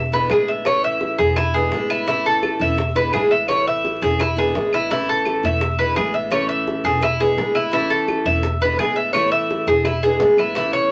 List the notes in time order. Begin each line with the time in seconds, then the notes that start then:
Already playing: E1 E5
0.12 D3 G#3 B3 E4 B4
0.29 A1 D3 G#3 B3 E4 G#4, high bongo, low bongo, claves
0.48 E5
0.65 E3 A3 C#4 E4 C#5, high bongo, claves
0.84 E5
1.01 high bongo
1.18 E1 A3 C#4 E4 G#4, high bongo
1.36 E4, muted steel-string acoustic guitar stroke, high bongo, claves
1.54 D3 G#3 B3 E4 G#4, high bongo
1.72 A1 D3 G#3 B3 E4, high bongo, low bongo
1.90 E4, high bongo, claves
2.07 E3 A3 C#4 E4, high bongo
2.26 A4
2.43 high bongo, claves
2.59 E1 A3 C#4 E4 E5
2.77 muted steel-string acoustic guitar stroke, high bongo
2.95 D3 G#3 B3 E4 B4
3.13 A1 D3 G#3 B3 E4 G#4, high bongo, low bongo, claves
3.31 E5
3.48 E3 A3 C#4 E4 C#5, high bongo, claves
3.67 E5
3.85 high bongo
4.01 E1 A3 C#4 E4 G#4, high bongo
4.19 E4, muted steel-string acoustic guitar stroke, high bongo, claves
4.36 D3 G#3 B3 E4 G#4, high bongo
4.54 A1 D3 G#3 B3 E4, high bongo, low bongo
4.73 E4, high bongo, claves
4.90 E3 A3 C#4 E4, high bongo
5.09 A4
5.25 high bongo, claves
5.43 E1 A3 C#4 E4 E5
5.61 muted steel-string acoustic guitar stroke, high bongo
5.79 D3 G#3 B3 E4 B4
5.95 A1 D3 G#3 B3 E4 G#4, high bongo, low bongo, claves
6.14 E5
6.30 E3 A3 C#4 E4 C#5, high bongo, claves
6.49 E5
6.67 high bongo
6.84 E1 A3 C#4 E4 G#4, high bongo
7.01 E4, muted steel-string acoustic guitar stroke, high bongo, claves
7.20 D3 G#3 B3 E4 G#4, high bongo
7.36 A1 D3 G#3 B3 E4, high bongo, low bongo
7.55 E4, high bongo, claves
7.72 E3 A3 C#4 E4, high bongo
7.90 A4
8.08 high bongo, claves
8.25 E1 A3 C#4 E4 E5
8.43 muted steel-string acoustic guitar stroke, high bongo
8.61 D3 G#3 B3 E4 B4
8.79 A1 D3 G#3 B3 E4 G#4, high bongo, low bongo, claves
8.96 E5
9.13 E3 A3 C#4 E4 C#5, high bongo, claves
9.32 E5
9.51 high bongo
9.67 E1 A3 C#4 E4 G#4, high bongo
9.85 E4, muted steel-string acoustic guitar stroke, high bongo, claves
10.03 D3 G#3 B3 E4 G#4
10.20 A1 D3 G#3 B3 E4, low bongo
10.37 E4, low bongo, claves
10.55 E3 A3 C#4 E4, high bongo
10.73 C#5, high bongo